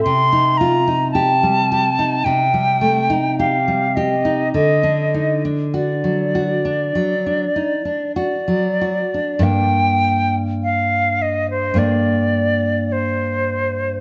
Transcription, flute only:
X:1
M:4/4
L:1/16
Q:1/4=52
K:Gm
V:1 name="Flute"
c'2 b2 a4 g4 f2 e2 | e3 z d8 d4 | g4 f2 e c d4 c4 |]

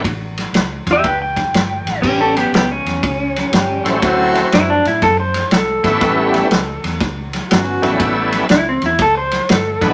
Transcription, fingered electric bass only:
X:1
M:4/4
L:1/8
Q:"Swing" 1/4=121
K:Amix
V:1 name="Fingered electric bass" clef=bass
A,,,2 C,, E,, C,,2 G,,, A,,, | A,,,2 C,, E,, C,,2 G,,, A,,, | D,,2 F,, A,, F,,2 =C,, ^G,,, | A,,,2 C,, E,, C,,2 G,,, A,,, |
A,,,2 C,, E,, C,,2 G,,, A,,, |]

